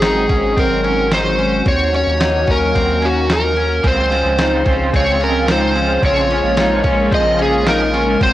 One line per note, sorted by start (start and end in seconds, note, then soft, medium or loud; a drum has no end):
0.00 0.28 G#1 medium
0.00 1.64 D#3 medium
0.00 1.64 F#3 medium
0.00 1.62 G#3 medium
0.00 1.64 C4 medium
0.00 0.29 D#4 loud
0.00 3.80 F#4 loud
0.00 0.60 G#4 medium
0.00 snare loud
0.00 ride medium
0.00 tambourine medium
0.29 0.56 G#1 medium
0.29 0.56 C#4 medium
0.29 kick loud
0.29 ride soft
0.57 1.62 G#1 loud
0.57 0.84 C4 loud
0.57 1.14 A#4 medium
0.57 kick medium
0.57 ride medium
0.84 1.11 C#4 medium
0.84 ride soft
1.11 1.38 D#4 medium
1.11 1.68 C5 loud
1.11 snare loud
1.11 ride medium
1.11 tambourine medium
1.38 1.66 C#4 medium
1.38 ride soft
1.66 2.05 D#2 loud
1.66 3.82 D#3 medium
1.66 3.82 F#3 medium
1.66 3.82 A#3 medium
1.66 1.93 C4 medium
1.66 3.82 C#4 medium
1.66 1.95 C#5 medium
1.66 kick loud
1.66 ride medium
1.93 2.20 C#4 medium
1.93 2.51 C#5 loud
1.93 ride soft
2.07 2.46 D#2 loud
2.20 2.47 D#4 medium
2.20 snare loud
2.20 ride medium
2.20 tambourine medium
2.47 2.74 D#2 medium
2.47 2.75 C#4 medium
2.47 3.06 A#4 medium
2.47 kick medium
2.47 ride soft
2.75 3.80 D#2 loud
2.75 3.02 C4 loud
2.75 kick medium
2.75 ride medium
3.02 3.29 C#4 medium
3.02 3.32 F#4 medium
3.02 ride soft
3.29 3.56 D#4 medium
3.29 3.87 A#4 medium
3.29 snare loud
3.29 ride medium
3.29 tambourine medium
3.57 3.84 C#4 medium
3.57 ride soft
3.83 4.23 C#2 loud
3.83 4.11 C#3 medium
3.83 8.16 C#3 medium
3.83 8.16 F3 medium
3.83 8.33 G#3 medium
3.83 4.12 G#3 medium
3.83 6.00 C4 medium
3.83 4.11 C4 medium
3.83 4.12 C4 medium
3.83 8.16 F4 loud
3.83 4.09 F4 medium
3.83 kick loud
3.83 ride medium
3.87 4.96 C5 loud
4.10 4.40 C4 medium
4.10 4.39 C#4 medium
4.10 4.38 F4 medium
4.10 ride soft
4.15 4.38 G#3 medium
4.25 4.64 C#2 loud
4.37 4.65 C#3 medium
4.37 4.66 G#3 medium
4.37 4.66 C4 medium
4.37 4.66 D#4 medium
4.37 snare loud
4.37 ride soft
4.37 tambourine medium
4.42 4.63 F4 medium
4.65 4.92 C#2 loud
4.65 4.93 C4 medium
4.65 4.93 C#4 medium
4.65 4.93 F4 medium
4.65 kick loud
4.65 ride soft
4.69 4.92 G#3 soft
4.92 5.99 C#2 medium
4.92 5.20 C#3 medium
4.92 5.21 G#3 medium
4.92 5.20 C4 loud
4.92 5.20 C4 medium
4.92 5.18 F4 medium
4.92 kick medium
4.92 ride medium
4.96 5.23 C#5 loud
5.19 5.48 C4 soft
5.19 5.48 C#4 medium
5.19 5.47 F4 medium
5.19 ride soft
5.23 5.47 G#3 soft
5.23 5.50 A#4 loud
5.46 5.74 C#3 medium
5.46 5.75 G#3 medium
5.46 5.75 C4 medium
5.46 5.75 D#4 medium
5.46 snare loud
5.46 ride medium
5.46 tambourine medium
5.51 5.72 F4 medium
5.51 6.01 C5 loud
5.73 6.03 C4 soft
5.73 6.02 C#4 medium
5.73 6.02 F4 medium
5.73 ride soft
5.78 6.02 G#3 soft
6.01 6.41 A#1 loud
6.01 6.29 A#2 medium
6.01 6.30 F3 medium
6.01 6.30 G#3 medium
6.01 8.19 A#3 medium
6.01 6.30 C4 medium
6.01 6.30 C#4 medium
6.01 6.27 F4 medium
6.01 kick loud
6.01 ride medium
6.06 7.14 C#5 loud
6.28 6.57 C#4 medium
6.28 6.58 C#4 medium
6.28 6.56 F4 medium
6.28 ride soft
6.33 6.56 G#3 medium
6.44 6.82 A#1 medium
6.56 6.84 F3 medium
6.56 6.85 G#3 medium
6.56 6.84 C#4 medium
6.56 6.84 D#4 medium
6.56 snare medium
6.56 ride medium
6.56 tambourine medium
6.61 6.82 F4 medium
6.83 7.10 A#1 medium
6.83 7.11 C#4 medium
6.83 7.12 C#4 medium
6.83 7.11 F4 medium
6.83 kick loud
6.83 ride soft
6.88 7.11 G#3 medium
7.11 8.17 A#1 loud
7.11 7.38 A#2 medium
7.11 7.39 F3 medium
7.11 7.39 G#3 loud
7.11 7.39 C4 loud
7.11 7.39 C#4 medium
7.11 7.37 F4 medium
7.11 7.39 D#5 loud
7.11 kick medium
7.11 ride soft
7.38 7.66 C#4 medium
7.38 7.67 C#4 medium
7.38 7.66 F4 medium
7.38 ride soft
7.42 7.65 G#3 soft
7.42 7.69 G#4 loud
7.65 7.93 F3 medium
7.65 7.94 G#3 medium
7.65 7.93 C#4 medium
7.65 7.93 D#4 medium
7.65 snare loud
7.65 ride medium
7.65 tambourine medium
7.69 7.91 F4 medium
7.69 8.23 A#4 loud
7.92 8.21 C#4 medium
7.92 8.20 F4 medium
7.92 ride soft
7.96 8.21 G#3 soft
8.19 8.33 G#1 loud
8.19 8.33 G#2 medium
8.19 8.33 D#3 medium
8.19 8.33 F#3 medium
8.19 8.33 F#3 loud
8.19 8.33 C4 medium
8.19 8.33 C4 loud
8.19 8.33 C4 medium
8.19 8.33 F#4 loud
8.19 8.33 C5 loud
8.19 kick loud
8.19 ride soft